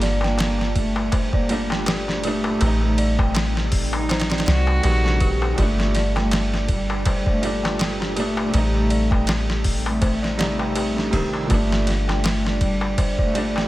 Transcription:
Already playing: G1 A#2 G3 A#3 D4 A4
0.02 D5, snare, ride
0.21 A#3 G5, snare, darbuka tek
0.38 snare, ride, darbuka tek
0.58 snare, darbuka tek
0.76 A3, kick, ride
0.96 darbuka tek
1.12 C5, kick, ride, darbuka tek
1.33 A#3 D5, kick, darbuka tek
1.49 A#2 G3 A3 D4 D5, ride
1.70 G5, snare, darbuka tek
1.86 G4, snare, ride, darbuka tek
2.08 D4, snare, darbuka tek
2.23 A#2 G3 A3 D4 G4, ride
2.44 darbuka tek
2.58 A1 C3 G3 C4 G4, ride, darbuka tek
2.63 A3 D#4
2.81 A3, darbuka tek
2.98 D5, ride
3.19 G5, kick, darbuka tek
3.34 snare, ride, darbuka tek
3.56 snare, darbuka tek
3.72 kick, open hi-hat
3.93 D#4, darbuka tek
4.09 C5, snare, ride, darbuka tek
4.20 snare, ride
4.30 D5, snare, ride, darbuka tek
4.38 snare, ride
4.46 C2 F#4 D5, snare, ride
4.67 G5, darbuka tek
4.82 A#1 C3 D#3 G3 A3 G4, ride, darbuka tek
5.04 D4, snare, darbuka tek
5.20 G4, kick, ride
5.42 darbuka tek
5.55 G1 A#2 G3 G4, kick, ride, darbuka tek
5.60 A3 D4
5.79 snare, darbuka tek
5.95 D5, snare, ride
6.16 A3 G5, snare, darbuka tek
6.31 snare, ride, darbuka tek
6.54 snare, darbuka tek
6.68 G3, kick, ride
6.90 darbuka tek
7.06 C5, kick, ride, darbuka tek
7.26 A3 D5, kick, darbuka tek
7.41 A#2 G3 A3 D4 D5, ride
7.63 G5, snare, darbuka tek
7.79 G4, snare, ride, darbuka tek
8.00 D4, snare, darbuka tek
8.16 A#2 G3 A3 D4 G4, ride
8.37 darbuka tek
8.50 C3 G3 G4
8.54 A1 A3 C4 D#4, ride, darbuka tek
8.75 A3, darbuka tek
8.90 D5, ride
9.10 G5, kick, darbuka tek
9.27 snare, ride, darbuka tek
9.50 snare, darbuka tek
9.64 kick, open hi-hat
9.86 A3, darbuka tek
10.01 C5, kick, ride, darbuka tek
10.22 D5, snare, darbuka tek
10.37 C3 G3 A3 D#4 D5, snare, ride
10.59 G5, darbuka tek
10.76 G4, ride, darbuka tek
10.96 D4, snare, darbuka tek
11.11 C3 G3 A3 G4, kick, ride
11.15 D#3
11.33 darbuka tek
11.46 A#2 G3 G4, kick, ride
11.50 G1 A3 D4, darbuka tek
11.71 snare, darbuka tek
11.87 D5, snare, ride
12.08 A3 G5, snare, darbuka tek
12.24 snare, ride, darbuka tek
12.45 snare, darbuka tek
12.61 G3, kick, ride
12.81 darbuka tek
12.98 C5, kick, ride, darbuka tek
13.19 A3 D5, kick, darbuka tek
13.34 A#2 G3 A3 D4 D5, ride
13.56 G5, snare, darbuka tek

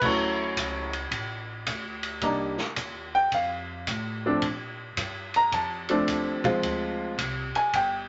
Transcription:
0.01 D2 F#3 A3 C#4 E4 C#5, kick, crash
0.56 C#2, kick, hi-hat pedal, ride
0.93 ride
1.11 A1, kick, ride
1.67 D2, kick, hi-hat pedal, ride
2.03 ride
2.21 C2 G3 A#3 D4 D#4, kick, ride
2.58 snare
2.76 D#2, kick, hi-hat pedal, ride
3.15 G5
3.32 F2 F5, kick, ride
3.87 A2, kick, hi-hat pedal, ride
4.26 F3 A3 C4 D4
4.42 A#2, kick, ride
4.97 G2, kick, hi-hat pedal, ride
5.34 A#5, ride
5.52 F2 A5, kick, ride
5.89 F3 A3 C4 D4, ride
6.07 D#2, kick, hi-hat pedal, ride
6.44 F3 G#3 C4 F4, kick, ride
6.62 D2, kick, ride
7.17 C2, kick, hi-hat pedal, ride
7.55 G#5, muted upright bass stroke, ride
7.73 G1 G5, kick, ride

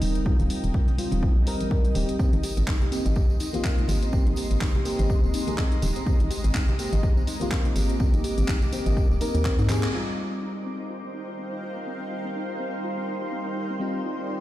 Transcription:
Already playing: G3 C4 D#4 A#4 D#5 G5
0.01 D#1, open hi-hat, high conga
0.15 closed hi-hat
0.25 G3 C4 F4, kick
0.39 D#1, closed hi-hat, high conga
0.50 open hi-hat
0.64 D#1, closed hi-hat
0.74 kick, high conga
0.88 closed hi-hat, low conga
0.98 G3 C4 F4, open hi-hat
1.12 D#1, closed hi-hat, high conga
1.23 kick
1.36 A#1
1.46 G3 C4 A#4, open hi-hat
1.60 closed hi-hat, high conga
1.71 kick
1.85 closed hi-hat
1.95 D#1 G3 C4 G4, open hi-hat, high conga
2.09 closed hi-hat
2.19 G#3 A#3 C4 G4, kick, tambourine
2.33 G#1 D#4 A#5, closed hi-hat, high conga
2.43 G4, open hi-hat, tambourine
2.57 G#1 C4 C6, closed hi-hat, tambourine
2.67 D#4, kick, clap, tambourine, high conga
2.81 G4, closed hi-hat, low conga
2.91 A#3 C4 G4, open hi-hat, tambourine
3.05 G#1 D#5, closed hi-hat, tambourine, high conga
3.16 G4, kick, tambourine
3.30 C4, tambourine
3.40 D#4, open hi-hat, tambourine
3.53 A#3 C4 F4 G4, closed hi-hat, tambourine, high conga
3.64 C4, kick, clap, tambourine
3.78 D#4, closed hi-hat, low conga
3.88 G#1 G4, open hi-hat, tambourine, high conga
4.02 C4, closed hi-hat, tambourine
4.12 A#3 C4 G4, kick, tambourine
4.26 G#1 D#4, closed hi-hat, high conga
4.36 G4, open hi-hat, tambourine
4.51 G#1 C4, closed hi-hat
4.61 D#4, kick, clap, tambourine, high conga
4.75 G4, closed hi-hat, low conga
4.84 A#3 C4 G4, open hi-hat, tambourine
4.99 G#1 D#5, closed hi-hat, tambourine, high conga
5.10 G4, kick, tambourine
5.23 D#1 C4, tambourine
5.34 D#4, open hi-hat, tambourine
5.47 A#3 C4 G4 G#4, closed hi-hat, tambourine, high conga
5.58 C4, kick, clap, tambourine
5.72 D#4, closed hi-hat
5.82 D#1 G4, open hi-hat, tambourine, high conga
5.96 C4, closed hi-hat, tambourine
6.06 A#3 C4 G4, kick, tambourine
6.20 G#1 D#4, closed hi-hat, high conga
6.31 G4, open hi-hat, tambourine
6.44 G#1 C4, closed hi-hat, tambourine
6.55 D#4, kick, clap, tambourine, high conga
6.60 D6
6.68 G4, closed hi-hat, low conga
6.79 A#3 C4 G4, open hi-hat, tambourine
6.93 G#1 D#5, closed hi-hat, high conga
7.03 G4, kick, tambourine
7.17 C4, tambourine
7.27 D#4, open hi-hat, tambourine
7.40 A#3 C4 F4 G4, closed hi-hat, tambourine, high conga
7.51 C4, kick, clap, tambourine
7.65 D#4, closed hi-hat, low conga
7.76 G#1 G4, open hi-hat, tambourine, high conga
7.89 C4, closed hi-hat, tambourine
7.99 A#3 C4 G4, kick, tambourine
8.13 G#1 D#4, closed hi-hat, tambourine, high conga
8.24 G4, open hi-hat, tambourine
8.38 G#1 C4, closed hi-hat, tambourine
8.48 D#4, kick, clap, tambourine, high conga
8.62 G4, closed hi-hat, tambourine, low conga
8.72 A#3 C4 G4, open hi-hat, tambourine
8.86 G#1 D#5, closed hi-hat, tambourine, high conga
8.97 G4, kick, tambourine
9.10 D#1 C4, tambourine
9.20 A#3 C4 D#4 A#4, open hi-hat, tambourine
9.34 D#2 G4, closed hi-hat, tambourine, high conga
9.45 C4, kick, clap, tambourine
9.59 G#2 D#4, closed hi-hat, tambourine
9.69 A#3 C4 G4 G#4, clap, open hi-hat, tambourine, high conga
9.83 C4, clap, closed hi-hat
9.92 G3 C4 D#4 F4 C5 F5 C6
9.98 A#4
10.04 D#4 G5
10.18 F4
10.31 C4
10.39 D#4 F5
10.56 F4
10.66 C4
10.80 D#5
10.90 F4
11.04 C4
11.14 D#4
11.28 F4
11.39 C4
11.52 D#4
11.63 F4
11.77 C4
11.87 C4
12.01 D#4
12.11 F4
12.25 C4
12.35 D#4
12.49 F4
12.60 C4
12.73 D#5
12.84 F4
12.98 C4
13.08 D#4
13.22 F4
13.32 C4
13.46 D#4
13.56 F4
13.70 C4
13.79 G3 C4 D#4 F4 D5
13.94 D#4
14.05 F4
14.19 C4
14.29 D#4

